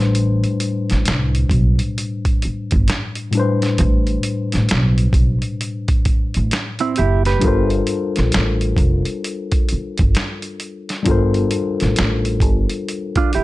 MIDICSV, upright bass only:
0, 0, Header, 1, 3, 480
1, 0, Start_track
1, 0, Tempo, 909091
1, 81, Time_signature, 4, 2, 24, 8
1, 7095, End_track
2, 0, Start_track
2, 0, Title_t, "Upright bass"
2, 0, Program_c, 0, 32
2, 0, Note_on_c, 0, 33, 90
2, 229, Note_off_c, 0, 33, 0
2, 485, Note_on_c, 0, 33, 73
2, 551, Note_off_c, 0, 33, 0
2, 576, Note_on_c, 0, 36, 78
2, 762, Note_off_c, 0, 36, 0
2, 796, Note_on_c, 0, 35, 72
2, 918, Note_off_c, 0, 35, 0
2, 1444, Note_on_c, 0, 31, 75
2, 1511, Note_off_c, 0, 31, 0
2, 2007, Note_on_c, 0, 33, 92
2, 2197, Note_off_c, 0, 33, 0
2, 2403, Note_on_c, 0, 33, 67
2, 2470, Note_off_c, 0, 33, 0
2, 2492, Note_on_c, 0, 35, 75
2, 2679, Note_off_c, 0, 35, 0
2, 2714, Note_on_c, 0, 35, 66
2, 2837, Note_off_c, 0, 35, 0
2, 3362, Note_on_c, 0, 33, 65
2, 3429, Note_off_c, 0, 33, 0
2, 3692, Note_on_c, 0, 30, 81
2, 3880, Note_off_c, 0, 30, 0
2, 3927, Note_on_c, 0, 31, 90
2, 4117, Note_off_c, 0, 31, 0
2, 4323, Note_on_c, 0, 34, 82
2, 4390, Note_off_c, 0, 34, 0
2, 4415, Note_on_c, 0, 33, 73
2, 4601, Note_off_c, 0, 33, 0
2, 4635, Note_on_c, 0, 29, 79
2, 4757, Note_off_c, 0, 29, 0
2, 5283, Note_on_c, 0, 31, 71
2, 5350, Note_off_c, 0, 31, 0
2, 5847, Note_on_c, 0, 31, 91
2, 6037, Note_off_c, 0, 31, 0
2, 6243, Note_on_c, 0, 33, 74
2, 6310, Note_off_c, 0, 33, 0
2, 6336, Note_on_c, 0, 33, 80
2, 6555, Note_off_c, 0, 33, 0
2, 6555, Note_on_c, 0, 31, 79
2, 6677, Note_off_c, 0, 31, 0
2, 7095, End_track
3, 0, Start_track
3, 0, Title_t, "Muted upright bass strokes"
3, 1294, Note_on_c, 9, 29, 38
3, 1347, Note_off_c, 9, 29, 0
3, 3205, Note_on_c, 9, 29, 38
3, 3258, Note_off_c, 9, 29, 0
3, 5135, Note_on_c, 9, 29, 43
3, 5188, Note_off_c, 9, 29, 0
3, 7055, Note_on_c, 9, 29, 42
3, 7095, Note_off_c, 9, 29, 0
3, 7095, End_track
0, 0, End_of_file